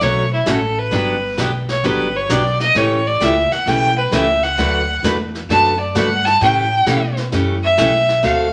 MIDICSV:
0, 0, Header, 1, 6, 480
1, 0, Start_track
1, 0, Tempo, 456969
1, 971, Time_signature, 4, 2, 24, 8
1, 8959, End_track
2, 0, Start_track
2, 0, Title_t, "Fiddle"
2, 0, Program_c, 0, 110
2, 32, Note_on_c, 0, 73, 88
2, 343, Note_off_c, 0, 73, 0
2, 350, Note_on_c, 0, 64, 62
2, 516, Note_on_c, 0, 69, 79
2, 532, Note_off_c, 0, 64, 0
2, 824, Note_on_c, 0, 71, 86
2, 840, Note_off_c, 0, 69, 0
2, 1457, Note_off_c, 0, 71, 0
2, 1792, Note_on_c, 0, 73, 78
2, 1950, Note_on_c, 0, 71, 89
2, 1966, Note_off_c, 0, 73, 0
2, 2274, Note_on_c, 0, 73, 92
2, 2290, Note_off_c, 0, 71, 0
2, 2433, Note_on_c, 0, 74, 90
2, 2449, Note_off_c, 0, 73, 0
2, 2737, Note_off_c, 0, 74, 0
2, 2743, Note_on_c, 0, 75, 113
2, 2913, Note_on_c, 0, 73, 97
2, 2929, Note_off_c, 0, 75, 0
2, 3227, Note_on_c, 0, 74, 94
2, 3243, Note_off_c, 0, 73, 0
2, 3399, Note_on_c, 0, 76, 91
2, 3415, Note_off_c, 0, 74, 0
2, 3695, Note_on_c, 0, 78, 98
2, 3711, Note_off_c, 0, 76, 0
2, 3861, Note_on_c, 0, 79, 116
2, 3877, Note_off_c, 0, 78, 0
2, 4173, Note_off_c, 0, 79, 0
2, 4179, Note_on_c, 0, 71, 82
2, 4340, Note_on_c, 0, 76, 100
2, 4355, Note_off_c, 0, 71, 0
2, 4653, Note_on_c, 0, 78, 102
2, 4669, Note_off_c, 0, 76, 0
2, 5292, Note_off_c, 0, 78, 0
2, 5783, Note_on_c, 0, 81, 102
2, 6077, Note_off_c, 0, 81, 0
2, 6089, Note_on_c, 0, 74, 50
2, 6259, Note_on_c, 0, 78, 98
2, 6275, Note_off_c, 0, 74, 0
2, 6566, Note_on_c, 0, 81, 116
2, 6582, Note_off_c, 0, 78, 0
2, 6728, Note_off_c, 0, 81, 0
2, 6748, Note_on_c, 0, 79, 91
2, 7499, Note_off_c, 0, 79, 0
2, 8017, Note_on_c, 0, 76, 102
2, 8665, Note_on_c, 0, 77, 88
2, 8681, Note_off_c, 0, 76, 0
2, 8959, Note_off_c, 0, 77, 0
2, 8959, End_track
3, 0, Start_track
3, 0, Title_t, "Steel-string acoustic guitar"
3, 0, Program_c, 1, 25
3, 10, Note_on_c, 1, 50, 48
3, 13, Note_on_c, 1, 54, 61
3, 15, Note_on_c, 1, 57, 52
3, 19, Note_on_c, 1, 61, 58
3, 23, Note_on_c, 1, 66, 60
3, 249, Note_off_c, 1, 50, 0
3, 250, Note_off_c, 1, 54, 0
3, 251, Note_off_c, 1, 57, 0
3, 253, Note_off_c, 1, 61, 0
3, 255, Note_off_c, 1, 66, 0
3, 483, Note_on_c, 1, 50, 74
3, 486, Note_on_c, 1, 54, 76
3, 491, Note_on_c, 1, 61, 80
3, 493, Note_on_c, 1, 57, 77
3, 493, Note_on_c, 1, 66, 80
3, 613, Note_off_c, 1, 50, 0
3, 614, Note_off_c, 1, 54, 0
3, 617, Note_off_c, 1, 61, 0
3, 618, Note_off_c, 1, 57, 0
3, 618, Note_off_c, 1, 66, 0
3, 956, Note_on_c, 1, 50, 65
3, 964, Note_on_c, 1, 54, 61
3, 964, Note_on_c, 1, 59, 60
3, 970, Note_on_c, 1, 62, 64
3, 971, Note_on_c, 1, 67, 60
3, 1202, Note_off_c, 1, 50, 0
3, 1206, Note_off_c, 1, 54, 0
3, 1206, Note_off_c, 1, 59, 0
3, 1209, Note_off_c, 1, 62, 0
3, 1210, Note_off_c, 1, 67, 0
3, 1443, Note_on_c, 1, 50, 69
3, 1448, Note_on_c, 1, 54, 73
3, 1450, Note_on_c, 1, 59, 68
3, 1456, Note_on_c, 1, 62, 81
3, 1460, Note_on_c, 1, 67, 78
3, 1573, Note_off_c, 1, 50, 0
3, 1576, Note_off_c, 1, 54, 0
3, 1577, Note_off_c, 1, 59, 0
3, 1580, Note_off_c, 1, 62, 0
3, 1582, Note_off_c, 1, 67, 0
3, 1932, Note_on_c, 1, 50, 59
3, 1933, Note_on_c, 1, 54, 61
3, 1934, Note_on_c, 1, 59, 61
3, 1939, Note_on_c, 1, 62, 54
3, 1942, Note_on_c, 1, 67, 66
3, 2171, Note_off_c, 1, 50, 0
3, 2171, Note_off_c, 1, 54, 0
3, 2171, Note_off_c, 1, 59, 0
3, 2174, Note_off_c, 1, 62, 0
3, 2175, Note_off_c, 1, 67, 0
3, 2412, Note_on_c, 1, 50, 77
3, 2413, Note_on_c, 1, 54, 73
3, 2416, Note_on_c, 1, 59, 86
3, 2423, Note_on_c, 1, 62, 83
3, 2424, Note_on_c, 1, 67, 82
3, 2538, Note_off_c, 1, 50, 0
3, 2539, Note_off_c, 1, 54, 0
3, 2540, Note_off_c, 1, 59, 0
3, 2544, Note_off_c, 1, 62, 0
3, 2544, Note_off_c, 1, 67, 0
3, 2887, Note_on_c, 1, 49, 58
3, 2892, Note_on_c, 1, 52, 63
3, 2894, Note_on_c, 1, 57, 61
3, 2896, Note_on_c, 1, 61, 70
3, 2899, Note_on_c, 1, 67, 62
3, 3128, Note_off_c, 1, 49, 0
3, 3131, Note_off_c, 1, 52, 0
3, 3132, Note_off_c, 1, 57, 0
3, 3133, Note_off_c, 1, 61, 0
3, 3134, Note_off_c, 1, 67, 0
3, 3366, Note_on_c, 1, 49, 67
3, 3371, Note_on_c, 1, 52, 72
3, 3378, Note_on_c, 1, 57, 69
3, 3379, Note_on_c, 1, 61, 77
3, 3383, Note_on_c, 1, 67, 79
3, 3495, Note_off_c, 1, 49, 0
3, 3498, Note_off_c, 1, 52, 0
3, 3501, Note_off_c, 1, 57, 0
3, 3502, Note_off_c, 1, 61, 0
3, 3504, Note_off_c, 1, 67, 0
3, 3854, Note_on_c, 1, 49, 47
3, 3858, Note_on_c, 1, 52, 53
3, 3861, Note_on_c, 1, 57, 57
3, 3861, Note_on_c, 1, 61, 51
3, 3867, Note_on_c, 1, 67, 57
3, 4092, Note_off_c, 1, 49, 0
3, 4094, Note_off_c, 1, 52, 0
3, 4095, Note_off_c, 1, 57, 0
3, 4095, Note_off_c, 1, 61, 0
3, 4098, Note_off_c, 1, 67, 0
3, 4326, Note_on_c, 1, 49, 73
3, 4332, Note_on_c, 1, 52, 84
3, 4334, Note_on_c, 1, 57, 75
3, 4338, Note_on_c, 1, 61, 84
3, 4341, Note_on_c, 1, 67, 91
3, 4455, Note_off_c, 1, 49, 0
3, 4458, Note_off_c, 1, 52, 0
3, 4459, Note_off_c, 1, 57, 0
3, 4461, Note_off_c, 1, 61, 0
3, 4463, Note_off_c, 1, 67, 0
3, 4808, Note_on_c, 1, 50, 69
3, 4812, Note_on_c, 1, 54, 68
3, 4815, Note_on_c, 1, 57, 64
3, 4816, Note_on_c, 1, 62, 64
3, 4818, Note_on_c, 1, 66, 59
3, 4820, Note_on_c, 1, 71, 70
3, 5048, Note_off_c, 1, 50, 0
3, 5051, Note_off_c, 1, 54, 0
3, 5052, Note_off_c, 1, 57, 0
3, 5053, Note_off_c, 1, 62, 0
3, 5054, Note_off_c, 1, 66, 0
3, 5055, Note_off_c, 1, 71, 0
3, 5294, Note_on_c, 1, 50, 68
3, 5296, Note_on_c, 1, 54, 68
3, 5299, Note_on_c, 1, 57, 77
3, 5299, Note_on_c, 1, 62, 74
3, 5305, Note_on_c, 1, 66, 73
3, 5307, Note_on_c, 1, 71, 76
3, 5419, Note_off_c, 1, 50, 0
3, 5420, Note_off_c, 1, 54, 0
3, 5422, Note_off_c, 1, 57, 0
3, 5422, Note_off_c, 1, 62, 0
3, 5425, Note_off_c, 1, 66, 0
3, 5426, Note_off_c, 1, 71, 0
3, 5774, Note_on_c, 1, 50, 53
3, 5780, Note_on_c, 1, 54, 46
3, 5781, Note_on_c, 1, 57, 57
3, 5782, Note_on_c, 1, 62, 53
3, 5784, Note_on_c, 1, 66, 57
3, 5788, Note_on_c, 1, 71, 56
3, 6012, Note_off_c, 1, 50, 0
3, 6014, Note_off_c, 1, 54, 0
3, 6015, Note_off_c, 1, 57, 0
3, 6016, Note_off_c, 1, 62, 0
3, 6016, Note_off_c, 1, 66, 0
3, 6019, Note_off_c, 1, 71, 0
3, 6250, Note_on_c, 1, 50, 74
3, 6255, Note_on_c, 1, 54, 86
3, 6261, Note_on_c, 1, 57, 81
3, 6263, Note_on_c, 1, 62, 82
3, 6265, Note_on_c, 1, 71, 86
3, 6266, Note_on_c, 1, 66, 74
3, 6377, Note_off_c, 1, 50, 0
3, 6379, Note_off_c, 1, 54, 0
3, 6383, Note_off_c, 1, 57, 0
3, 6384, Note_off_c, 1, 62, 0
3, 6385, Note_off_c, 1, 66, 0
3, 6385, Note_off_c, 1, 71, 0
3, 6732, Note_on_c, 1, 49, 65
3, 6736, Note_on_c, 1, 52, 61
3, 6741, Note_on_c, 1, 61, 67
3, 6742, Note_on_c, 1, 57, 60
3, 6749, Note_on_c, 1, 67, 66
3, 6971, Note_off_c, 1, 49, 0
3, 6973, Note_off_c, 1, 52, 0
3, 6975, Note_off_c, 1, 57, 0
3, 6975, Note_off_c, 1, 61, 0
3, 6979, Note_off_c, 1, 67, 0
3, 7209, Note_on_c, 1, 49, 71
3, 7210, Note_on_c, 1, 52, 69
3, 7217, Note_on_c, 1, 57, 73
3, 7219, Note_on_c, 1, 61, 81
3, 7221, Note_on_c, 1, 67, 69
3, 7337, Note_off_c, 1, 49, 0
3, 7337, Note_off_c, 1, 52, 0
3, 7340, Note_off_c, 1, 57, 0
3, 7342, Note_off_c, 1, 61, 0
3, 7343, Note_off_c, 1, 67, 0
3, 7690, Note_on_c, 1, 49, 53
3, 7692, Note_on_c, 1, 52, 56
3, 7695, Note_on_c, 1, 57, 58
3, 7700, Note_on_c, 1, 61, 63
3, 7705, Note_on_c, 1, 67, 63
3, 7929, Note_off_c, 1, 49, 0
3, 7930, Note_off_c, 1, 52, 0
3, 7932, Note_off_c, 1, 57, 0
3, 7934, Note_off_c, 1, 61, 0
3, 7937, Note_off_c, 1, 67, 0
3, 8165, Note_on_c, 1, 49, 71
3, 8169, Note_on_c, 1, 52, 74
3, 8175, Note_on_c, 1, 57, 76
3, 8175, Note_on_c, 1, 61, 91
3, 8178, Note_on_c, 1, 67, 78
3, 8295, Note_off_c, 1, 49, 0
3, 8296, Note_off_c, 1, 52, 0
3, 8299, Note_off_c, 1, 57, 0
3, 8299, Note_off_c, 1, 61, 0
3, 8301, Note_off_c, 1, 67, 0
3, 8641, Note_on_c, 1, 50, 61
3, 8643, Note_on_c, 1, 57, 61
3, 8645, Note_on_c, 1, 60, 56
3, 8650, Note_on_c, 1, 66, 71
3, 8652, Note_on_c, 1, 69, 71
3, 8885, Note_off_c, 1, 50, 0
3, 8886, Note_off_c, 1, 57, 0
3, 8886, Note_off_c, 1, 60, 0
3, 8889, Note_off_c, 1, 66, 0
3, 8890, Note_off_c, 1, 69, 0
3, 8959, End_track
4, 0, Start_track
4, 0, Title_t, "Upright bass"
4, 0, Program_c, 2, 32
4, 12, Note_on_c, 2, 35, 89
4, 477, Note_off_c, 2, 35, 0
4, 487, Note_on_c, 2, 33, 85
4, 954, Note_off_c, 2, 33, 0
4, 969, Note_on_c, 2, 31, 87
4, 1436, Note_off_c, 2, 31, 0
4, 1447, Note_on_c, 2, 35, 81
4, 1915, Note_off_c, 2, 35, 0
4, 1926, Note_on_c, 2, 31, 85
4, 2394, Note_off_c, 2, 31, 0
4, 2408, Note_on_c, 2, 35, 91
4, 2875, Note_off_c, 2, 35, 0
4, 2889, Note_on_c, 2, 33, 87
4, 3356, Note_off_c, 2, 33, 0
4, 3368, Note_on_c, 2, 37, 96
4, 3669, Note_off_c, 2, 37, 0
4, 3843, Note_on_c, 2, 35, 87
4, 4313, Note_off_c, 2, 35, 0
4, 4322, Note_on_c, 2, 37, 91
4, 4793, Note_off_c, 2, 37, 0
4, 4806, Note_on_c, 2, 38, 84
4, 5274, Note_off_c, 2, 38, 0
4, 5282, Note_on_c, 2, 40, 93
4, 5753, Note_off_c, 2, 40, 0
4, 5768, Note_on_c, 2, 42, 94
4, 6236, Note_off_c, 2, 42, 0
4, 6252, Note_on_c, 2, 43, 87
4, 6717, Note_off_c, 2, 43, 0
4, 6735, Note_on_c, 2, 45, 88
4, 7199, Note_off_c, 2, 45, 0
4, 7212, Note_on_c, 2, 47, 85
4, 7677, Note_off_c, 2, 47, 0
4, 7696, Note_on_c, 2, 42, 85
4, 8159, Note_off_c, 2, 42, 0
4, 8170, Note_on_c, 2, 35, 90
4, 8636, Note_off_c, 2, 35, 0
4, 8654, Note_on_c, 2, 38, 87
4, 8959, Note_off_c, 2, 38, 0
4, 8959, End_track
5, 0, Start_track
5, 0, Title_t, "Muted upright bass strokes"
5, 3691, Note_on_c, 9, 29, 42
5, 3796, Note_off_c, 9, 29, 0
5, 8959, End_track
6, 0, Start_track
6, 0, Title_t, "Drums"
6, 7, Note_on_c, 9, 25, 46
6, 7, Note_on_c, 9, 38, 45
6, 112, Note_off_c, 9, 38, 0
6, 489, Note_on_c, 9, 38, 69
6, 489, Note_on_c, 9, 44, 70
6, 594, Note_off_c, 9, 38, 0
6, 594, Note_off_c, 9, 44, 0
6, 968, Note_off_c, 9, 25, 0
6, 968, Note_on_c, 9, 25, 48
6, 968, Note_on_c, 9, 38, 43
6, 1074, Note_off_c, 9, 38, 0
6, 1450, Note_on_c, 9, 38, 65
6, 1450, Note_on_c, 9, 44, 49
6, 1555, Note_off_c, 9, 38, 0
6, 1555, Note_off_c, 9, 44, 0
6, 1770, Note_on_c, 9, 38, 42
6, 1875, Note_off_c, 9, 38, 0
6, 1933, Note_off_c, 9, 25, 0
6, 1933, Note_on_c, 9, 25, 54
6, 1933, Note_on_c, 9, 38, 40
6, 2038, Note_off_c, 9, 38, 0
6, 2411, Note_on_c, 9, 38, 61
6, 2411, Note_on_c, 9, 44, 64
6, 2516, Note_off_c, 9, 38, 0
6, 2516, Note_off_c, 9, 44, 0
6, 2731, Note_on_c, 9, 38, 42
6, 2836, Note_off_c, 9, 38, 0
6, 2888, Note_off_c, 9, 25, 0
6, 2888, Note_on_c, 9, 25, 51
6, 2888, Note_on_c, 9, 38, 46
6, 2993, Note_off_c, 9, 38, 0
6, 3371, Note_on_c, 9, 38, 59
6, 3371, Note_on_c, 9, 44, 55
6, 3476, Note_off_c, 9, 38, 0
6, 3476, Note_off_c, 9, 44, 0
6, 3695, Note_on_c, 9, 38, 43
6, 3800, Note_off_c, 9, 38, 0
6, 3855, Note_off_c, 9, 25, 0
6, 3855, Note_on_c, 9, 25, 46
6, 3855, Note_on_c, 9, 38, 48
6, 3960, Note_off_c, 9, 38, 0
6, 4332, Note_on_c, 9, 38, 70
6, 4332, Note_on_c, 9, 44, 70
6, 4437, Note_off_c, 9, 38, 0
6, 4437, Note_off_c, 9, 44, 0
6, 4658, Note_on_c, 9, 38, 40
6, 4763, Note_off_c, 9, 38, 0
6, 4818, Note_off_c, 9, 25, 0
6, 4818, Note_on_c, 9, 25, 51
6, 4818, Note_on_c, 9, 38, 39
6, 4923, Note_off_c, 9, 38, 0
6, 5296, Note_on_c, 9, 38, 63
6, 5296, Note_on_c, 9, 44, 62
6, 5401, Note_off_c, 9, 38, 0
6, 5401, Note_off_c, 9, 44, 0
6, 5617, Note_on_c, 9, 38, 38
6, 5722, Note_off_c, 9, 38, 0
6, 5776, Note_off_c, 9, 25, 0
6, 5776, Note_on_c, 9, 25, 42
6, 5776, Note_on_c, 9, 38, 46
6, 5881, Note_off_c, 9, 38, 0
6, 6250, Note_on_c, 9, 38, 66
6, 6250, Note_on_c, 9, 44, 63
6, 6355, Note_off_c, 9, 38, 0
6, 6355, Note_off_c, 9, 44, 0
6, 6573, Note_on_c, 9, 38, 44
6, 6678, Note_off_c, 9, 38, 0
6, 6732, Note_off_c, 9, 25, 0
6, 6732, Note_on_c, 9, 25, 43
6, 6732, Note_on_c, 9, 38, 40
6, 6837, Note_off_c, 9, 38, 0
6, 7212, Note_on_c, 9, 38, 63
6, 7212, Note_on_c, 9, 44, 53
6, 7317, Note_off_c, 9, 38, 0
6, 7317, Note_off_c, 9, 44, 0
6, 7530, Note_on_c, 9, 38, 42
6, 7635, Note_off_c, 9, 38, 0
6, 7690, Note_off_c, 9, 25, 0
6, 7690, Note_on_c, 9, 25, 50
6, 7690, Note_on_c, 9, 38, 47
6, 7795, Note_off_c, 9, 38, 0
6, 8172, Note_on_c, 9, 38, 65
6, 8172, Note_on_c, 9, 44, 77
6, 8277, Note_off_c, 9, 38, 0
6, 8277, Note_off_c, 9, 44, 0
6, 8495, Note_on_c, 9, 38, 44
6, 8600, Note_off_c, 9, 38, 0
6, 8652, Note_off_c, 9, 25, 0
6, 8652, Note_on_c, 9, 25, 45
6, 8652, Note_on_c, 9, 38, 45
6, 8757, Note_off_c, 9, 38, 0
6, 8959, Note_off_c, 9, 25, 0
6, 8959, End_track
0, 0, End_of_file